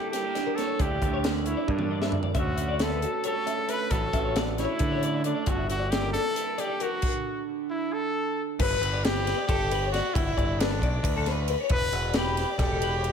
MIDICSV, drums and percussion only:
0, 0, Header, 1, 2, 480
1, 0, Start_track
1, 0, Tempo, 444444
1, 867, Time_signature, 7, 3, 24, 8
1, 14170, End_track
2, 0, Start_track
2, 0, Title_t, "Drums"
2, 143, Note_on_c, 9, 42, 93
2, 150, Note_on_c, 9, 38, 33
2, 251, Note_off_c, 9, 42, 0
2, 258, Note_off_c, 9, 38, 0
2, 382, Note_on_c, 9, 42, 73
2, 389, Note_on_c, 9, 38, 34
2, 490, Note_off_c, 9, 42, 0
2, 497, Note_off_c, 9, 38, 0
2, 624, Note_on_c, 9, 42, 71
2, 632, Note_on_c, 9, 38, 32
2, 732, Note_off_c, 9, 42, 0
2, 740, Note_off_c, 9, 38, 0
2, 858, Note_on_c, 9, 42, 88
2, 859, Note_on_c, 9, 36, 100
2, 966, Note_off_c, 9, 42, 0
2, 967, Note_off_c, 9, 36, 0
2, 1098, Note_on_c, 9, 36, 72
2, 1101, Note_on_c, 9, 42, 64
2, 1206, Note_off_c, 9, 36, 0
2, 1209, Note_off_c, 9, 42, 0
2, 1339, Note_on_c, 9, 42, 83
2, 1347, Note_on_c, 9, 38, 104
2, 1447, Note_off_c, 9, 42, 0
2, 1455, Note_off_c, 9, 38, 0
2, 1573, Note_on_c, 9, 42, 63
2, 1681, Note_off_c, 9, 42, 0
2, 1817, Note_on_c, 9, 36, 107
2, 1925, Note_off_c, 9, 36, 0
2, 1928, Note_on_c, 9, 48, 61
2, 2036, Note_off_c, 9, 48, 0
2, 2178, Note_on_c, 9, 38, 72
2, 2286, Note_off_c, 9, 38, 0
2, 2290, Note_on_c, 9, 43, 88
2, 2398, Note_off_c, 9, 43, 0
2, 2406, Note_on_c, 9, 43, 83
2, 2514, Note_off_c, 9, 43, 0
2, 2534, Note_on_c, 9, 42, 88
2, 2535, Note_on_c, 9, 36, 105
2, 2642, Note_off_c, 9, 42, 0
2, 2643, Note_off_c, 9, 36, 0
2, 2781, Note_on_c, 9, 42, 68
2, 2889, Note_off_c, 9, 42, 0
2, 3018, Note_on_c, 9, 42, 86
2, 3025, Note_on_c, 9, 38, 105
2, 3126, Note_off_c, 9, 42, 0
2, 3133, Note_off_c, 9, 38, 0
2, 3265, Note_on_c, 9, 42, 68
2, 3373, Note_off_c, 9, 42, 0
2, 3496, Note_on_c, 9, 42, 96
2, 3604, Note_off_c, 9, 42, 0
2, 3747, Note_on_c, 9, 42, 74
2, 3855, Note_off_c, 9, 42, 0
2, 3981, Note_on_c, 9, 42, 76
2, 4089, Note_off_c, 9, 42, 0
2, 4219, Note_on_c, 9, 42, 94
2, 4223, Note_on_c, 9, 36, 104
2, 4327, Note_off_c, 9, 42, 0
2, 4331, Note_off_c, 9, 36, 0
2, 4464, Note_on_c, 9, 36, 77
2, 4464, Note_on_c, 9, 42, 74
2, 4572, Note_off_c, 9, 36, 0
2, 4572, Note_off_c, 9, 42, 0
2, 4706, Note_on_c, 9, 42, 85
2, 4714, Note_on_c, 9, 38, 103
2, 4814, Note_off_c, 9, 42, 0
2, 4822, Note_off_c, 9, 38, 0
2, 4949, Note_on_c, 9, 42, 62
2, 4956, Note_on_c, 9, 38, 35
2, 5057, Note_off_c, 9, 42, 0
2, 5064, Note_off_c, 9, 38, 0
2, 5175, Note_on_c, 9, 42, 86
2, 5184, Note_on_c, 9, 36, 107
2, 5283, Note_off_c, 9, 42, 0
2, 5292, Note_off_c, 9, 36, 0
2, 5429, Note_on_c, 9, 42, 67
2, 5537, Note_off_c, 9, 42, 0
2, 5661, Note_on_c, 9, 42, 68
2, 5769, Note_off_c, 9, 42, 0
2, 5900, Note_on_c, 9, 42, 84
2, 5906, Note_on_c, 9, 36, 110
2, 6008, Note_off_c, 9, 42, 0
2, 6014, Note_off_c, 9, 36, 0
2, 6152, Note_on_c, 9, 42, 63
2, 6260, Note_off_c, 9, 42, 0
2, 6393, Note_on_c, 9, 42, 91
2, 6400, Note_on_c, 9, 38, 104
2, 6501, Note_off_c, 9, 42, 0
2, 6508, Note_off_c, 9, 38, 0
2, 6637, Note_on_c, 9, 42, 62
2, 6644, Note_on_c, 9, 38, 34
2, 6745, Note_off_c, 9, 42, 0
2, 6752, Note_off_c, 9, 38, 0
2, 6871, Note_on_c, 9, 42, 98
2, 6979, Note_off_c, 9, 42, 0
2, 7110, Note_on_c, 9, 42, 72
2, 7218, Note_off_c, 9, 42, 0
2, 7346, Note_on_c, 9, 42, 70
2, 7454, Note_off_c, 9, 42, 0
2, 7582, Note_on_c, 9, 49, 96
2, 7589, Note_on_c, 9, 36, 102
2, 7690, Note_off_c, 9, 49, 0
2, 7697, Note_off_c, 9, 36, 0
2, 9282, Note_on_c, 9, 49, 112
2, 9285, Note_on_c, 9, 36, 113
2, 9390, Note_off_c, 9, 49, 0
2, 9393, Note_off_c, 9, 36, 0
2, 9534, Note_on_c, 9, 51, 74
2, 9642, Note_off_c, 9, 51, 0
2, 9768, Note_on_c, 9, 51, 94
2, 9776, Note_on_c, 9, 38, 113
2, 9876, Note_off_c, 9, 51, 0
2, 9884, Note_off_c, 9, 38, 0
2, 10013, Note_on_c, 9, 51, 73
2, 10020, Note_on_c, 9, 38, 34
2, 10121, Note_off_c, 9, 51, 0
2, 10128, Note_off_c, 9, 38, 0
2, 10246, Note_on_c, 9, 36, 107
2, 10249, Note_on_c, 9, 51, 105
2, 10354, Note_off_c, 9, 36, 0
2, 10357, Note_off_c, 9, 51, 0
2, 10491, Note_on_c, 9, 51, 83
2, 10599, Note_off_c, 9, 51, 0
2, 10732, Note_on_c, 9, 51, 78
2, 10739, Note_on_c, 9, 38, 37
2, 10840, Note_off_c, 9, 51, 0
2, 10847, Note_off_c, 9, 38, 0
2, 10966, Note_on_c, 9, 36, 122
2, 10974, Note_on_c, 9, 51, 107
2, 11074, Note_off_c, 9, 36, 0
2, 11082, Note_off_c, 9, 51, 0
2, 11207, Note_on_c, 9, 36, 83
2, 11215, Note_on_c, 9, 51, 81
2, 11315, Note_off_c, 9, 36, 0
2, 11323, Note_off_c, 9, 51, 0
2, 11452, Note_on_c, 9, 51, 105
2, 11460, Note_on_c, 9, 38, 105
2, 11560, Note_off_c, 9, 51, 0
2, 11568, Note_off_c, 9, 38, 0
2, 11686, Note_on_c, 9, 36, 73
2, 11694, Note_on_c, 9, 51, 83
2, 11794, Note_off_c, 9, 36, 0
2, 11802, Note_off_c, 9, 51, 0
2, 11922, Note_on_c, 9, 36, 112
2, 11929, Note_on_c, 9, 51, 117
2, 12030, Note_off_c, 9, 36, 0
2, 12037, Note_off_c, 9, 51, 0
2, 12162, Note_on_c, 9, 51, 86
2, 12169, Note_on_c, 9, 38, 38
2, 12270, Note_off_c, 9, 51, 0
2, 12277, Note_off_c, 9, 38, 0
2, 12396, Note_on_c, 9, 51, 87
2, 12504, Note_off_c, 9, 51, 0
2, 12629, Note_on_c, 9, 51, 107
2, 12637, Note_on_c, 9, 36, 113
2, 12737, Note_off_c, 9, 51, 0
2, 12745, Note_off_c, 9, 36, 0
2, 12880, Note_on_c, 9, 51, 75
2, 12988, Note_off_c, 9, 51, 0
2, 13105, Note_on_c, 9, 51, 96
2, 13113, Note_on_c, 9, 38, 113
2, 13213, Note_off_c, 9, 51, 0
2, 13221, Note_off_c, 9, 38, 0
2, 13361, Note_on_c, 9, 51, 80
2, 13369, Note_on_c, 9, 38, 34
2, 13469, Note_off_c, 9, 51, 0
2, 13477, Note_off_c, 9, 38, 0
2, 13597, Note_on_c, 9, 36, 111
2, 13598, Note_on_c, 9, 51, 105
2, 13606, Note_on_c, 9, 38, 39
2, 13705, Note_off_c, 9, 36, 0
2, 13706, Note_off_c, 9, 51, 0
2, 13714, Note_off_c, 9, 38, 0
2, 13842, Note_on_c, 9, 51, 84
2, 13950, Note_off_c, 9, 51, 0
2, 14083, Note_on_c, 9, 51, 78
2, 14170, Note_off_c, 9, 51, 0
2, 14170, End_track
0, 0, End_of_file